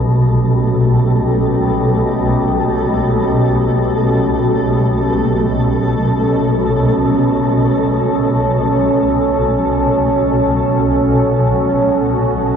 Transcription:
Already playing: synth drone B1 B2, ambient pad B2 C#4 G4 A4, synth texture A3 A4
8.52 ambient pad F#4

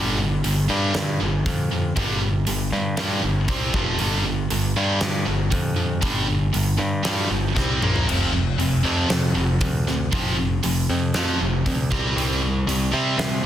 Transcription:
Already playing: picked electric bass G1, distorted electric guitar G2 D3 G3
0.20 distorted electric guitar G2 D3
0.44 picked electric bass G1, distorted electric guitar G2 D3, open hi-hat
0.69 distorted electric guitar G2 D3 G3, picked electric bass G2
0.94 distorted electric guitar G2 D3, picked electric bass G2, snare, open hi-hat
1.20 picked electric bass G1, distorted electric guitar G2 D3
1.46 picked electric bass F2, distorted electric guitar G2 D3, kick, open hi-hat
1.71 distorted electric guitar G2 D3
1.96 picked electric bass G1, distorted electric guitar G2 D3 G3, kick, open hi-hat
2.21 distorted electric guitar G2 D3
2.47 picked electric bass G1, distorted electric guitar G2 D3, open hi-hat
2.72 picked electric bass G2, distorted electric guitar G2 D3
2.97 distorted electric guitar G2 D3 G3, picked electric bass G2, snare, open hi-hat
3.22 picked electric bass G1, distorted electric guitar G2 D3
3.48 picked electric bass C2, distorted electric guitar C3 G3 C4, kick, open hi-hat
3.74 picked electric bass F1, distorted electric guitar F2 C3 F3, kick
3.99 picked electric bass G1, distorted electric guitar G2 D3 G3, open hi-hat
4.25 distorted electric guitar G2 D3
4.50 picked electric bass G1, distorted electric guitar G2 D3, open hi-hat
4.76 distorted electric guitar G2 D3 G3, picked electric bass G2
5.01 distorted electric guitar G2 D3, picked electric bass G2, snare, open hi-hat
5.26 picked electric bass G1, distorted electric guitar G2 D3
5.51 picked electric bass F2, distorted electric guitar G2 D3, kick, open hi-hat
5.76 distorted electric guitar G2 D3
6.01 picked electric bass G1, distorted electric guitar G2 D3 G3, kick, open hi-hat
6.27 distorted electric guitar G2 D3
6.53 picked electric bass G1, distorted electric guitar G2 D3, open hi-hat
6.78 distorted electric guitar G2 D3, picked electric bass G2
7.03 distorted electric guitar G2 D3 G3, picked electric bass G2, snare, open hi-hat
7.30 picked electric bass G1, distorted electric guitar G2 D3
7.55 picked electric bass C2, distorted electric guitar C3 G3 C4, kick, snare
7.81 picked electric bass A#1, distorted electric guitar A#2 F3 A#3, mid tom
7.96 floor tom
8.07 picked electric bass F1, distorted electric guitar F2 C3 F3, open hi-hat, crash
8.33 distorted electric guitar F2 C3
8.59 picked electric bass F1, distorted electric guitar F2 C3, open hi-hat
8.83 distorted electric guitar F2 C3 F3, picked electric bass F2
9.09 distorted electric guitar F2 C3, picked electric bass F2, snare, open hi-hat
9.35 picked electric bass F1, distorted electric guitar F2 C3
9.61 picked electric bass D2, distorted electric guitar F2 C3, kick, open hi-hat
9.87 distorted electric guitar F2 C3, snare
10.12 picked electric bass F1, distorted electric guitar F2 C3 F3, kick, open hi-hat
10.37 distorted electric guitar F2 C3
10.63 picked electric bass F1, distorted electric guitar F2 C3, open hi-hat
10.89 picked electric bass F2, distorted electric guitar F2 C3
11.14 picked electric bass F2, distorted electric guitar F2 C3 F3, snare, open hi-hat
11.41 picked electric bass F1, distorted electric guitar F2 C3
11.66 picked electric bass D2, distorted electric guitar F2 C3, kick, open hi-hat
11.91 picked electric bass C2, distorted electric guitar C3 G3 C4, kick, snare
12.16 picked electric bass C2, distorted electric guitar C3 G3 C4, open hi-hat
12.42 distorted electric guitar C3 G3
12.67 picked electric bass C2, distorted electric guitar C3 G3, open hi-hat
12.92 distorted electric guitar C3 G3 C4, picked electric bass C3
13.18 picked electric bass C3, distorted electric guitar C3 G3, snare, open hi-hat

